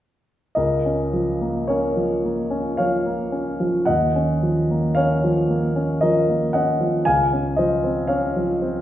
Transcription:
0.55 3.83 C#2 soft
0.55 1.65 A#4 soft
0.55 1.69 D#5 soft
0.85 1.30 C#4 soft
1.13 1.58 F3 soft
1.41 1.86 A#3 soft
1.68 2.14 C#4 soft
1.68 2.75 A#4 soft
1.68 2.77 C#5 soft
1.96 2.41 F3 soft
2.25 2.68 A#3 soft
2.51 2.95 C#4 soft
2.77 3.23 F3 soft
2.77 3.83 C#5 soft
2.77 3.87 F5 medium
3.06 3.49 A#3 soft
3.32 3.76 C#4 soft
3.60 3.87 F3 soft
3.85 7.02 D#2 soft
3.85 4.91 D#5 soft
3.85 4.94 F#5 medium
4.15 4.58 C#4 soft
4.43 4.85 F3 soft
4.71 5.12 A#3 soft
4.95 5.38 C#4 soft
4.95 5.97 C#5 soft
4.95 6.01 F5 medium
5.24 5.65 F3 soft
5.49 5.91 A#3 soft
5.76 6.18 C#4 soft
6.01 6.44 F3 soft
6.01 6.51 A#4 soft
6.01 6.53 D#5 soft
6.29 6.71 A#3 soft
6.53 6.96 C#4 soft
6.53 7.03 D#5 soft
6.53 7.06 F#5 medium
6.80 7.06 F3 soft
7.05 8.81 C#2 soft
7.05 7.54 F5 soft
7.05 7.57 G#5 medium
7.33 7.73 C#4 soft
7.57 7.99 F3 soft
7.57 8.06 C5 soft
7.57 8.08 D#5 soft
7.84 8.25 C4 soft
8.07 8.51 C#4 soft
8.07 8.81 C#5 soft
8.07 8.81 F5 medium
8.36 8.77 F3 soft
8.62 8.81 C4 soft

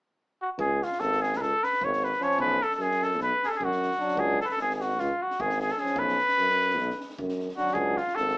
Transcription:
0.42 0.50 F#4 medium
0.58 0.81 C#2 medium
0.58 0.85 G#4 medium
0.58 kick medium
0.82 1.02 F4 medium
0.82 snare soft
0.92 snare soft
1.00 1.41 G#1 medium
1.00 1.24 A4 medium
1.00 snare soft
1.12 snare soft
1.22 1.39 G#4 medium
1.22 snare soft
1.33 snare soft
1.37 1.52 C#2 medium
1.37 1.43 B4 medium
1.37 kick soft
1.41 1.66 A4 medium
1.41 snare soft
1.63 1.86 B4 medium
1.63 snare soft
1.73 snare soft
1.81 2.12 G#1 medium
1.81 2.06 C#5 medium
1.81 kick medium
1.93 snare soft
2.04 2.25 B4 medium
2.04 snare soft
2.13 snare soft
2.20 2.60 F3 medium
2.20 2.60 C#4 medium
2.20 2.40 C#5 medium
2.20 snare soft
2.31 snare soft
2.38 2.61 B1 medium
2.38 2.64 B4 medium
2.38 kick medium
2.62 2.75 A4 medium
2.62 snare soft
2.71 snare soft
2.75 3.20 F#2 medium
2.75 2.84 A4 medium
2.80 3.05 G#4 medium
2.80 snare soft
2.91 snare soft
3.02 3.21 A4 medium
3.02 snare soft
3.11 snare soft
3.19 3.32 B1 medium
3.19 3.46 B4 medium
3.19 kick soft
3.19 snare soft
3.43 3.50 G#4 medium
3.43 snare soft
3.48 3.57 A4 medium
3.48 snare soft
3.56 3.66 G#4 medium
3.60 3.91 F#2 medium
3.60 kick medium
3.64 4.21 F#4 medium
3.72 snare soft
3.82 snare soft
3.91 snare soft
3.99 4.39 F#3 soft
3.99 4.39 D4 medium
3.99 snare soft
4.08 snare soft
4.15 4.38 C#2 medium
4.15 4.40 G#4 medium
4.15 kick medium
4.40 4.46 A4 medium
4.40 snare soft
4.44 4.53 B4 medium
4.49 4.59 A4 medium
4.49 snare soft
4.57 5.00 G#1 medium
4.57 snare soft
4.61 4.75 G#4 medium
4.70 snare soft
4.75 4.82 G#4 medium
4.80 5.01 F#4 medium
4.80 snare soft
4.90 snare soft
4.98 5.11 C#2 medium
4.98 5.24 F4 medium
4.98 kick medium
4.98 snare soft
5.22 5.42 F#4 medium
5.31 snare soft
5.39 5.71 G#1 medium
5.39 5.60 G#4 medium
5.39 kick medium
5.50 snare soft
5.60 5.73 G#4 medium
5.60 snare soft
5.68 5.81 A4 medium
5.68 snare soft
5.78 6.18 F3 soft
5.78 6.19 C#4 medium
5.78 6.00 G#4 medium
5.78 snare soft
5.86 snare soft
5.96 6.18 B1 medium
5.96 7.20 B4 loud
5.96 kick medium
6.08 snare soft
6.19 snare soft
6.28 snare soft
6.38 6.80 F#2 medium
6.38 snare soft
6.50 snare soft
6.61 snare soft
6.70 snare soft
6.78 6.90 B1 medium
6.78 kick medium
6.78 snare soft
6.90 snare soft
7.01 snare soft
7.10 snare soft
7.19 7.50 F#2 medium
7.19 kick medium
7.29 snare soft
7.39 snare soft
7.49 snare soft
7.57 7.97 F#3 soft
7.57 7.97 D4 medium
7.57 7.75 F#4 medium
7.57 snare soft
7.67 snare soft
7.74 7.97 C#2 medium
7.74 7.99 G#4 medium
7.74 kick medium
7.97 8.17 F4 medium
7.97 snare soft
8.08 snare soft
8.15 8.38 G#1 medium
8.15 8.38 A4 medium
8.15 snare soft
8.28 snare soft

